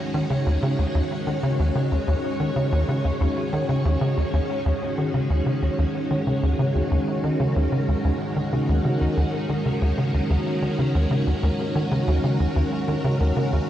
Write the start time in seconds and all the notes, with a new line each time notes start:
Already playing: D#3 G#3 C#4 F#4 C#5
0.14 D#3
0.30 C#3
0.46 D#2
0.62 C#3
0.78 D#2
0.95 D#2
1.27 D#3
1.43 C#3
1.59 D#2
1.75 C#3
1.91 D#2
2.07 D#2
2.40 D#3
2.56 C#3
2.72 D#2
2.88 C#3
3.04 D#2
3.21 D#2
3.53 D#3
3.69 C#3
3.85 D#2
4.01 C#3
4.17 D#2
4.33 D#2
4.66 D#2
4.98 D#3
5.14 C#3
5.30 D#2
5.46 C#3
5.62 D#2
5.78 D#2
6.11 D#3
6.27 C#3
6.43 D#2
6.59 C#3
6.75 D#2
6.91 D#2
7.18 A#4
7.24 D#3
7.40 C#3
7.56 D#2
7.72 C#3
7.88 D#2
8.04 D#2
8.37 D#3
8.53 C#3
8.69 D#2
8.85 C#3
9.01 D#2
9.17 D#2
9.49 D#3
9.66 C#3
9.82 D#2
9.98 C#3
10.14 D#2
10.30 D#2
10.62 D#3
10.79 C#3
10.95 D#2
11.11 C#3
11.27 D#2
11.43 D#2
11.75 D#3
11.91 C#3
12.07 D#2
12.24 C#3
12.40 D#2
12.56 D#2
12.88 D#3
13.04 C#3
13.20 D#2
13.36 C#3
13.53 D#2